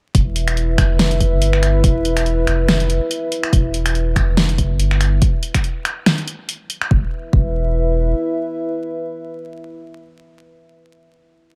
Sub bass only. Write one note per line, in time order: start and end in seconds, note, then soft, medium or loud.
0.15 0.77 E1 loud
0.78 1.33 F1 loud
1.32 1.83 G1 loud
1.84 2.46 E1 loud
2.47 2.99 F1 loud
3.53 4.15 E1 loud
4.16 4.71 F1 loud
4.70 5.20 G1 loud
6.91 7.03 E1 loud
7.33 8.14 E1 loud